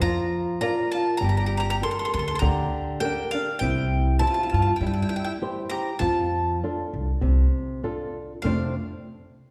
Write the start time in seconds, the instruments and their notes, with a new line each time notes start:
0.00 upright bass F2, nylon-string guitar F3, hollow-body jazz guitar F4, mandolin A#5
0.61 nylon-string guitar F4 A#4 D5, hollow-body jazz guitar F4, mandolin A#5
0.92 hollow-body jazz guitar F4, mandolin A5
1.17 nylon-string guitar G3, mandolin A#5
1.22 upright bass G1, hollow-body jazz guitar G4
1.29 hollow-body jazz guitar G4, mandolin A#5
1.37 hollow-body jazz guitar G4, mandolin A#5
1.46 hollow-body jazz guitar G4, mandolin A#5
1.57 hollow-body jazz guitar G4, mandolin A#5
1.63 hollow-body jazz guitar G4
1.70 hollow-body jazz guitar G4, mandolin A#5
1.82 nylon-string guitar G4 A4 A#4, hollow-body jazz guitar A4, mandolin C6
1.91 hollow-body jazz guitar A4, mandolin C6
1.99 hollow-body jazz guitar A4, mandolin C6
2.05 hollow-body jazz guitar A4, mandolin C6
2.14 upright bass D2, hollow-body jazz guitar A4, mandolin C6
2.19 hollow-body jazz guitar A4, mandolin C6
2.28 hollow-body jazz guitar A4, mandolin C6
2.35 hollow-body jazz guitar A4, mandolin C6
2.39 upright bass D2, nylon-string guitar D3, hollow-body jazz guitar G4, mandolin A#5
3.00 nylon-string guitar G4 A4 A#4, mandolin G5
3.05 hollow-body jazz guitar D4
3.31 hollow-body jazz guitar D4, mandolin F5
3.59 upright bass C2, nylon-string guitar C3, hollow-body jazz guitar E4, mandolin G5
4.19 nylon-string guitar E4 G4 C5, hollow-body jazz guitar E4, mandolin A5
4.27 hollow-body jazz guitar F4, mandolin A5
4.34 mandolin A5
4.39 hollow-body jazz guitar F4
4.43 hollow-body jazz guitar F4, mandolin A5
4.50 upright bass G2, hollow-body jazz guitar F4, mandolin A5
4.54 mandolin A5
4.59 hollow-body jazz guitar F4, mandolin A5
4.67 hollow-body jazz guitar F4
4.76 mandolin G5
4.81 upright bass G2, nylon-string guitar G3, hollow-body jazz guitar E4
4.87 hollow-body jazz guitar E4, mandolin G5
4.94 hollow-body jazz guitar E4, mandolin G5
5.02 hollow-body jazz guitar E4, mandolin G5
5.09 hollow-body jazz guitar E4, mandolin G5
5.16 hollow-body jazz guitar E4, mandolin G5
5.24 hollow-body jazz guitar E4, mandolin G5
5.41 nylon-string guitar E4 G4 C5
5.70 hollow-body jazz guitar G4, mandolin A#5
5.99 upright bass F2, nylon-string guitar F3, hollow-body jazz guitar F4, mandolin A5
6.64 nylon-string guitar D4 F4 A4
6.94 upright bass C2
7.21 upright bass C2, nylon-string guitar C3
7.83 nylon-string guitar D4 F4 A4
8.42 upright bass F1, nylon-string guitar F2 C3 A3 D4 C5, mandolin F5
8.46 hollow-body jazz guitar D4